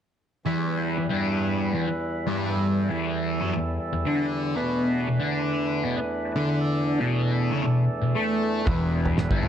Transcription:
0.46 E2 E3 G3 E4 B4
0.97 E2
1.09 G2 G3
1.74 E2 E3
1.88 muted distorted electric guitar stroke
2.27 G2 G3
2.53 A4
2.90 E2 E3
3.41 F#2 F#3
3.54 E2
3.93 E2
4.05 D3 D4
4.56 B2 E3 A3 B3 D4 B4
5.07 B2
5.19 D3 D4
5.84 B2 B3
5.97 muted distorted electric guitar stroke
6.36 D3 D4
6.61 A4
7.00 B2 B3
7.52 C#3 C#4
7.63 B2
8.02 B2
8.15 A3 A4
8.65 E1 E2 E3 G3 E4 B4, kick, floor tom
9.05 floor tom
9.18 E1 E2, snare, mid tom
9.31 G1 G2 G3, kick
9.43 floor tom

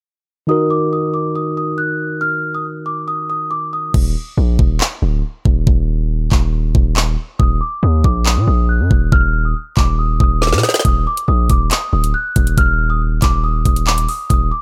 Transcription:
0.47 D#3 D#4 F#4 A#4 D#6
0.70 D6
0.93 D#6
1.14 D6
1.35 D#6
1.57 D#6
1.78 F#6
2.21 F6
2.54 D#6
2.86 D6
3.08 D#6
3.30 D#6
3.51 D6
3.73 D#6
3.94 D#1, kick, crash
4.37 A#1
4.59 D#1, kick
4.81 clap
5.02 D1
5.45 D#1, kick
5.67 D#1, kick
6.32 D#1, kick, clap
6.75 D#1, kick
6.96 clap
7.39 D#1 D#6, kick
7.61 D6
7.83 D#2 D#6
8.04 A#1 D6, kick
8.26 D#6, clap
8.37 A#2
8.47 A#1 D#6
8.69 F#6
8.80 F#2
8.91 D#1, kick
9.12 D#1 F6, kick
9.45 D#6
9.77 D#1 D6, kick, clap
9.99 D#6
10.20 D#1 D#6, kick
10.42 D6, snare
10.47 snare
10.53 A#2, snare
10.58 snare
10.63 D#6, snare
10.69 snare
10.74 snare
10.79 snare
10.85 D#1 D#6, kick, closed hi-hat
11.07 D6
11.17 closed hi-hat
11.28 A#1 D#6
11.50 D#1 D6, kick, closed hi-hat
11.71 D#6, clap, closed hi-hat
11.93 D1 D#6
12.04 closed hi-hat
12.14 F#6
12.36 D#1, kick, closed hi-hat
12.47 closed hi-hat
12.58 D#1 F6, kick, closed hi-hat
12.90 D#6
13.22 D#1 D6, kick, clap, closed hi-hat
13.44 D#6
13.65 D#1 D#6, kick, closed hi-hat
13.76 closed hi-hat
13.87 D6, clap
13.98 closed hi-hat
14.09 D#6, open hi-hat
14.30 D#1 D#6, kick, closed hi-hat
14.51 D6

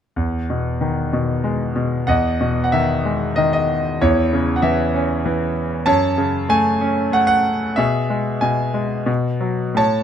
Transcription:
0.16 E2
0.50 B2
0.81 D#3
1.13 B2
1.44 G#3
1.76 B2
2.07 E2 D#5 F#5
2.41 B2
2.64 F#5
2.72 D#3 E5
3.05 G#3
3.36 D#3 D#5
3.53 D#5
4.01 E2 E4 C#5
4.33 C#3
4.56 F#5
4.62 E3 E5
4.95 C#4
5.26 E3
5.86 F#2 C#5 A5
6.18 C#3
6.49 A3 G#5
6.81 C#4
7.12 A3 F#5
7.27 F#5
7.76 B2 G#4 E5
8.10 G#3
8.41 B2 G#5
8.74 G#3
9.06 B2
9.41 F#3
9.75 A2 C#5 A5

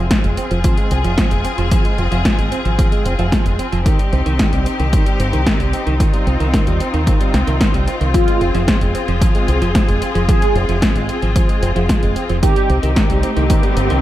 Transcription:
Already playing: C4 F4 G#4
0.11 F3, kick, snare, closed hi-hat
0.24 F1 G#3, closed hi-hat
0.37 C4, closed hi-hat
0.51 F1 F3, closed hi-hat
0.64 F3, kick, closed hi-hat
0.77 G#3, closed hi-hat
0.91 C2 C4, closed hi-hat
1.04 F1 F3, closed hi-hat
1.18 F3, kick, snare, closed hi-hat
1.31 F1 G#3, closed hi-hat
1.45 C4, closed hi-hat
1.58 F1 F3, closed hi-hat
1.71 F3, kick, closed hi-hat
1.85 G#3, closed hi-hat
1.98 F1 C4, closed hi-hat
2.12 F1 F3, closed hi-hat
2.25 F3, kick, snare, closed hi-hat
2.38 G#1 G#3, closed hi-hat
2.52 C4, closed hi-hat
2.65 G#1 F3, closed hi-hat
2.79 F3, kick, closed hi-hat
2.92 G#3, closed hi-hat
3.05 F1 C4, closed hi-hat
3.19 F1 F3, closed hi-hat
3.32 F3, kick, snare, closed hi-hat
3.46 F1 G#3, closed hi-hat
3.59 C4, closed hi-hat
3.72 F1 F3, closed hi-hat
3.86 D#3 D#4 G4, kick, closed hi-hat
3.99 G3, closed hi-hat
4.13 C2 C4, closed hi-hat
4.26 C2 D#3, closed hi-hat
4.39 D#3, kick, snare, closed hi-hat
4.53 C2 G3, closed hi-hat
4.66 C4, closed hi-hat
4.80 C2 D#3, closed hi-hat
4.93 D#3, kick, closed hi-hat
5.06 G3, closed hi-hat
5.20 G1 C4, closed hi-hat
5.33 C2 D#3, closed hi-hat
5.46 D#3, kick, snare, closed hi-hat
5.60 C2 G3, closed hi-hat
5.73 C4, closed hi-hat
5.87 C2 D#3, closed hi-hat
6.00 D#3 F4, kick, closed hi-hat
6.13 G3, closed hi-hat
6.27 C2 C4, closed hi-hat
6.40 C2 D#3, closed hi-hat
6.53 D#3, kick, snare, closed hi-hat
6.67 D#2 G3, closed hi-hat
6.80 C4, closed hi-hat
6.94 D#2 D#3, closed hi-hat
7.07 D#3, kick, closed hi-hat
7.20 G3, closed hi-hat
7.34 C2 C4, snare, closed hi-hat
7.47 C2 D#3, closed hi-hat
7.61 D#3, kick, snare, closed hi-hat
7.74 C2 G3, closed hi-hat
7.87 C4, closed hi-hat
8.01 C2 D#3, closed hi-hat
8.14 F3 F4 G#4, kick, closed hi-hat
8.28 G#3, closed hi-hat
8.41 F1 C4, closed hi-hat
8.54 F1 F3, closed hi-hat
8.68 F3, kick, snare, closed hi-hat
8.81 F1 G#3, closed hi-hat
8.95 C4, closed hi-hat
9.08 F1 F3, closed hi-hat
9.21 F3, kick, closed hi-hat
9.35 G#3, closed hi-hat
9.48 C2 C4, closed hi-hat
9.62 F1 F3, closed hi-hat
9.75 F3, kick, snare, closed hi-hat
9.88 F1 G#3, closed hi-hat
10.02 C4, closed hi-hat
10.15 F1 F3, closed hi-hat
10.29 F3 G#4, kick, closed hi-hat
10.42 G#3, closed hi-hat
10.55 F1 C4, closed hi-hat
10.69 F1 F3, closed hi-hat
10.82 F3, kick, snare, closed hi-hat
10.95 G#1 G#3, closed hi-hat
11.09 C4, closed hi-hat
11.22 G#1 F3, closed hi-hat
11.36 F3, kick, closed hi-hat
11.49 G#3, closed hi-hat
11.62 F1 C4, closed hi-hat
11.76 F1 F3, closed hi-hat
11.89 F3, kick, snare, closed hi-hat
12.03 F1 G#3, closed hi-hat
12.16 C4, closed hi-hat
12.29 F1 F3, closed hi-hat
12.43 D#3 C4 D#4 G4, kick, closed hi-hat, riser
12.56 G3, closed hi-hat
12.70 C2 C4, closed hi-hat
12.83 C2 D#3, closed hi-hat
12.96 D#3, kick, snare, closed hi-hat
13.10 C2 G3, closed hi-hat
13.23 C4, closed hi-hat
13.37 C2 D#3, closed hi-hat
13.50 D#3, kick, closed hi-hat
13.63 G3, closed hi-hat
13.77 G1 C4, closed hi-hat
13.90 C2 D#3, closed hi-hat

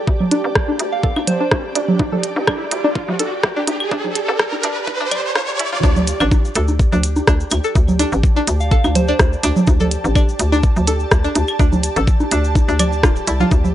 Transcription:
Already playing: G4 D5 A5, riser
0.07 D2, kick
0.20 low conga
0.31 D4, closed hi-hat, low bongo
0.44 A1
0.55 kick, cross-stick
0.68 D4, low bongo
0.79 D2, closed hi-hat
0.92 F5
1.03 A4 F5, kick
1.16 D2, low bongo, claves
1.27 C5, closed hi-hat, low conga
1.40 D4 C5
1.51 D2, kick, cross-stick, low bongo
1.75 D2 D4, closed hi-hat
1.88 low conga
1.99 D2, kick, low bongo
2.12 A4, low conga
2.23 closed hi-hat
2.36 A1, low bongo
2.47 D4, kick, cross-stick, claves
2.71 D2, closed hi-hat
2.84 D4, low bongo
2.95 kick
3.08 D2, low conga
3.19 A4, closed hi-hat, low bongo
3.43 D2, kick, cross-stick
3.56 D4
3.67 D2, closed hi-hat, low bongo
3.80 claves
3.91 D2 D4, kick
4.04 low bongo, low conga
4.15 closed hi-hat
4.28 A1 A4
4.39 kick, cross-stick
4.52 low bongo
4.63 D2 D4, closed hi-hat
4.87 kick, low bongo
5.00 D2 D4
5.11 D5, closed hi-hat, low conga, claves
5.35 F4, kick, cross-stick, low bongo
5.59 C2 E4, closed hi-hat
5.72 F4, low bongo, low conga
5.83 D2 D4 G4, kick, low bongo, shaker
5.96 low conga, shaker
6.07 closed hi-hat, shaker
6.20 A1 D4, claves, shaker
6.31 D5, kick, low bongo, shaker
6.45 shaker
6.55 D2 A4, closed hi-hat, shaker
6.68 low bongo, shaker
6.79 kick, shaker
6.92 D2 D4, low conga, shaker
7.03 closed hi-hat, shaker
7.16 A5, low bongo, shaker
7.27 D2 D4, kick, cross-stick, shaker
7.40 shaker
7.51 D2, closed hi-hat, low bongo, claves, shaker
7.64 A4, shaker
7.75 D2, kick, shaker
7.88 low conga, shaker
7.99 D4, closed hi-hat, low bongo, shaker
8.12 A1, shaker
8.23 kick, shaker
8.36 D4, low bongo, shaker
8.47 D2, closed hi-hat, shaker
8.60 F5, shaker
8.71 A4 F5, kick, shaker
8.84 D2, low bongo, claves, shaker
8.95 C5, closed hi-hat, low conga, shaker
9.08 D4 C5, shaker
9.19 D2, kick, cross-stick, low bongo, shaker
9.33 shaker
9.43 D2 D4, closed hi-hat, shaker
9.56 low conga, shaker
9.67 D2, kick, low bongo, shaker
9.80 A4, low conga, shaker
9.91 closed hi-hat, shaker
10.04 A1, low bongo, shaker
10.15 D4, kick, claves, shaker
10.29 shaker
10.39 D2, closed hi-hat, shaker
10.52 D4, low bongo, shaker
10.63 kick, shaker
10.76 D2, low conga, shaker
10.87 A4, closed hi-hat, low bongo, shaker
11.00 shaker
11.11 D2, kick, cross-stick, shaker
11.24 D4, shaker
11.35 D2, closed hi-hat, low bongo, shaker
11.48 claves, shaker
11.59 D2 D4, kick, shaker
11.72 low bongo, low conga, shaker
11.83 closed hi-hat, shaker
11.96 A1 A4, closed hi-hat, shaker
12.07 kick, shaker
12.20 low bongo, shaker
12.31 D2 D4, closed hi-hat, shaker
12.44 shaker
12.55 kick, low bongo, shaker
12.68 D2 D4, shaker
12.79 D5, closed hi-hat, low conga, claves, shaker
12.92 shaker
13.03 D1 F4, kick, cross-stick, low bongo, shaker
13.16 shaker
13.27 C2 E4, closed hi-hat, shaker
13.40 F4, low bongo, low conga, shaker
13.51 D2, kick, low bongo, shaker
13.64 low conga, shaker

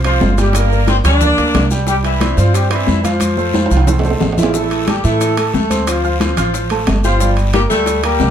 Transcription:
Already playing: C2
0.04 F3 C4 F4 C5 F5, high bongo, high conga, high timbale, maracas
0.21 G1, high bongo, low bongo, high conga, low timbale, short guiro, maracas
0.37 G3 G4 G5, high bongo, high conga, high timbale, short guiro, maracas
0.53 A#3 A#4, high bongo, high conga, high timbale, long guiro, maracas
0.71 A#3 A#4 D5, high conga, maracas
0.87 C4 C5, high bongo, high conga, high timbale, short guiro, maracas
1.04 D2 G3 D4 G4 D5 G5, high bongo, low conga, high timbale, short guiro, maracas
1.21 A#3 A#4 D5, high bongo, high conga, low conga, long guiro, maracas
1.38 D2 A#3 A#4 D5, high bongo, high timbale, maracas
1.54 C2, high bongo, low bongo, high conga, high timbale, low timbale, short guiro, maracas
1.71 G3 G4 G5, high bongo, high conga, short guiro, maracas
1.87 G3 G4 G5, high bongo, high conga, long guiro, maracas
2.04 E3 E4, high conga, high timbale, maracas
2.20 C4 C5 D5, high bongo, high conga, high timbale, short guiro, maracas
2.37 G2 F3 C4 F4 C5 D5, high bongo, high conga, short guiro, maracas
2.54 G3 G4, high bongo, high conga, high timbale, long guiro, maracas
2.70 E3 C4 E4 C5 D5, high bongo, high conga, high timbale, maracas
2.87 F2, high bongo, low bongo, high conga, short guiro, maracas
3.03 F3 F4 F5, high bongo, high conga, high timbale, short guiro, maracas
3.20 high bongo, high conga, high timbale, long guiro, maracas
3.37 A3 A4 C5, high conga, maracas
3.54 high bongo, high conga, high timbale, short guiro, maracas
3.66 high timbale
3.70 C2 F3 F4 F5, high bongo, short guiro, maracas
3.77 high timbale
3.87 A3 A4 C5, high bongo, low conga, high timbale, long guiro, maracas
3.99 low timbale
4.04 A3 A4 C5, high bongo, low conga, maracas
4.10 low timbale
4.20 A1, high bongo, low bongo, low conga, low timbale, short guiro, maracas
4.32 low timbale
4.37 E3 F3 E4 F4 E5, high bongo, low conga, short guiro, maracas
4.43 low timbale
4.54 E3 A3 E4 A4 E5, high bongo, high conga, long guiro, maracas
4.71 high conga, high timbale, maracas
4.87 G3 A3 G4 A4 A5, high bongo, high conga, high timbale, short guiro, maracas
5.04 A2 E3 A3 E4 A4 E5, high bongo, high conga, short guiro, maracas
5.21 high bongo, high conga, high timbale, long guiro, maracas
5.37 A3 A4 A5, high bongo, high conga, high timbale, maracas
5.54 D2 A3 A4, high bongo, low bongo, high conga, short guiro, maracas
5.70 C4 C5 C6, high bongo, high conga, high timbale, short guiro, maracas
5.87 F3 F4, high bongo, high conga, high timbale, long guiro, maracas
6.04 F4 F5 F6, high conga, maracas
6.20 F3 C4 F4 C5 C6, high bongo, high conga, high timbale, short guiro, maracas
6.36 A1 F4 F5 F6, low conga, high timbale, short guiro, maracas
6.54 high bongo, high conga, long guiro, maracas
6.70 A3 A4 A5, high bongo, high conga, high timbale, maracas
6.87 G1, high bongo, low bongo, high conga, high timbale, low timbale, short guiro, maracas
7.04 F3 F4 G4 G5 G6, high bongo, high conga, short guiro, maracas
7.20 G3 G4 G5, high bongo, high conga, long guiro, maracas
7.37 high conga, high timbale, maracas
7.53 G3 A#3 G4 A#4 A#5, high bongo, high conga, high timbale, short guiro, maracas
7.70 D2 G3 A3 G4 A4 G5, high bongo, high conga, short guiro, maracas
7.86 high bongo, high conga, high timbale, long guiro, maracas
8.03 G3 A#3 G4 A#4 A#5, high bongo, high conga, high timbale, maracas
8.20 C2, high bongo, low bongo, high conga, low timbale, short guiro, maracas

